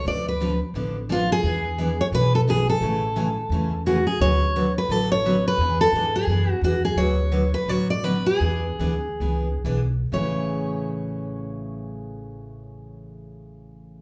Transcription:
X:1
M:4/4
L:1/16
Q:"Swing" 1/4=174
K:A
V:1 name="Steel-string acoustic guitar"
d2 B4 z6 =F2 G2- | G6 c2 B2 A2 G2 A2- | A12 F2 G2 | c6 B2 A2 c4 B2- |
B2 A4 G6 F2 G2 | c6 B2 c2 d2 B2 G2- | G12 z4 | c16- |
c16 |]
V:2 name="Steel-string acoustic guitar"
[D,=F,B,DA]2 z2 [D,F,B,DA] z3 [D,F,B,DA]2 z2 [D,F,B,DA] z3 | [E,B,DG]2 z2 [E,B,DG] z3 [E,B,DG]2 z2 [E,B,DG] z3 | [C,E,A,CG]2 z2 [C,E,A,CG] z3 [C,E,A,CG]2 z2 [C,E,A,CG] z3 | [D,F,B,FB]2 z2 [D,F,B,FB] z3 [D,F,B,FB]2 z2 [D,F,B,FB] z3 |
[E,B,DG]2 z2 [E,B,DG] z3 [E,B,DG]2 z2 [E,B,DG] z3 | [D,F,B,FB]2 z2 [D,F,B,FB] z3 [D,F,B,FB]2 z2 [D,F,B,FB] z3 | [E,B,DG]2 z2 [E,B,DG] z3 [E,B,DG]2 z2 [E,B,DG] z3 | [A,,C,E,A,CG]16- |
[A,,C,E,A,CG]16 |]
V:3 name="Upright bass" clef=bass
D,,8 A,,,8 | E,,8 B,,,8 | A,,,8 E,,8 | D,,8 A,,,8 |
E,,4 G,,4 F,,4 E,,4 | D,,8 A,,,8 | E,,4 D,,4 C,,4 B,,,4 | A,,,16- |
A,,,16 |]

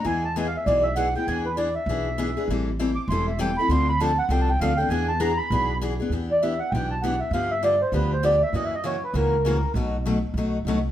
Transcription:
X:1
M:4/4
L:1/8
Q:"Swing" 1/4=198
K:Ephr
V:1 name="Accordion"
^g a (3g f e d e ^f =g | ^g B d e4- e | z3 d' c' e g b | c' b a ^f (3g a g =f g |
^g a _b =b3 z2 | [K:G] z d e f g a f e | =f e d c B c d e | (3^d e d ^c B ^A4 |
z8 |]
V:2 name="Steel-string acoustic guitar"
[E,^G,B,E^G] z [E,G,B,EG] z [E,G,B,EG] z [E,G,B,EG] [B,EG] | [E,B,D^G] z [E,B,DG] z [E,B,DG] z [E,B,DG] [B,DG] | [E,G,CEA] z [E,G,CEA] z [E,G,CEA] z [E,G,CEA] [CEA] | [D,F,CDA] z [D,F,CDA] z [D,F,CDA] z [D,F,CDA] [CDA] |
[E,B,D^G] z [E,B,DG] z [E,B,DG] z [E,B,DG] [B,DG] | [K:G] [E,B,DG] z [E,B,DG] z [E,B,DG] z [E,B,DG] z | [D,=F,B,DG] z [D,F,B,DG] z [D,F,B,DG] z [D,F,B,DG] z | [^C,E,^A,^CF] z [C,E,A,CF] z [C,E,A,CF] z [C,E,A,CF] z |
[B,,F,A,^DF] z [B,,F,A,DF] z [B,,F,A,DF] z [B,,F,A,DF] z |]
V:3 name="Upright bass" clef=bass
E,,4 B,,,4 | E,,4 B,,,4 | A,,,4 E,,,4 | D,,4 C,,2 D,,2 |
E,,4 B,,,4 | [K:G] E,,4 B,,,4 | G,,4 D,,4 | F,,4 ^C,,4 |
B,,,4 B,,,2 C,,2 |]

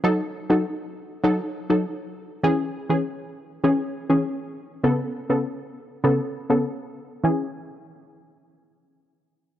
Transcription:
X:1
M:4/4
L:1/16
Q:1/4=100
K:C#m
V:1 name="Synth stab"
[F,DA]3 [F,DA] z4 [F,DA] z2 [F,DA] z4 | [E,CG]3 [E,CG] z4 [E,CG] z2 [E,CG] z4 | [C,B,A]3 [C,B,A] z4 [C,B,A] z2 [C,B,A] z4 | [E,CG]2 z12 z2 |]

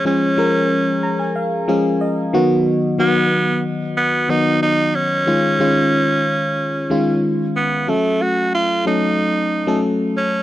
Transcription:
X:1
M:4/4
L:1/16
Q:1/4=92
K:Dbmix
V:1 name="Tenor saxophone"
D8 z8 | z2 C4 z2 C2 E2 E2 D2- | D12 z2 C2 | =A,2 G2 F2 E6 z2 D2 |]
V:2 name="FM electric piano"
z6 b a f2 f2 e4 | z16 | z16 | z16 |]
V:3 name="FM electric piano"
[F,A,DA] z [F,A,DB]4- [F,A,DB] z3 [F,A,DA]4 [E,G,CG]2- | [E,G,CG] z [E,G,CG]4- [E,G,CG] z3 [E,G,CG]4 z2 | [E,A,DF] z [E,A,DF]4- [E,A,DF] z3 [E,A,DF]4 z2 | [G,=A,D=A]4 z2 [G,A,DA]3 z2 [G,A,DA]3 z2 |]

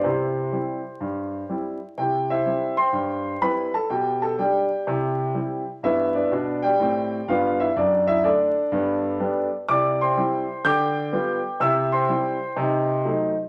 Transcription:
X:1
M:4/4
L:1/8
Q:"Swing" 1/4=124
K:C
V:1 name="Grand piano"
[EGc]6 z2 | [Gg] [Ece]2 [cgc']3 [Bb] [Aa] | [Gg] [Aa] [Gdg]4- [Gdg] z | [Ee] [DBd]2 [Gdg]3 [Ff] [Ee] |
[Dd] [Ee] [DAd]4- [DAd] z | [dd'] [cgc']3 [gd'g']4 | [ee'] [cgc']6 z |]
V:2 name="Grand piano"
C,2 [G,CE]2 G,,2 [G,CE]2 | [C,E]2 [G,CE]2 G,,2 [G,CE]2 | B,,2 [G,D]2 [C,E]2 [G,CE]2 | [G,,B,]2 [B,,D]2 [A,,C]2 [G,,B,]2 |
^F,,2 A,2 [G,,B,]2 [G,B,D]2 | [C,E]2 [G,CE]2 D,2 [G,B,F]2 | [C,E]2 [G,CE]2 [C,_E]2 [_G,A,E]2 |]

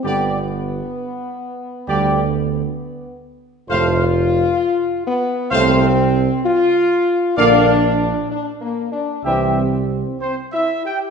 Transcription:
X:1
M:4/4
L:1/8
Q:1/4=65
K:Flyd
V:1 name="Trumpet section"
[Gd] z3 [Gd] z3 | [cf] z3 [cf] z3 | [df] z3 [Ge] z (3c e g |]
V:2 name="French horn section"
B,6- B, z | F3 B, C2 F2 | D2 (3D _B, D C2 (3C E G |]
V:3 name="Trombone section" clef=bass
[D,G,] z3 [D,G,] z3 | [A,,A,] z3 [A,,A,] z3 | [D,_B,] z3 [E,G,] z3 |]
V:4 name="Tuba" clef=bass
G,,,2 z2 D,,2 z2 | F,,,2 z2 C,,2 z2 | _B,,,2 z2 C,,2 z2 |]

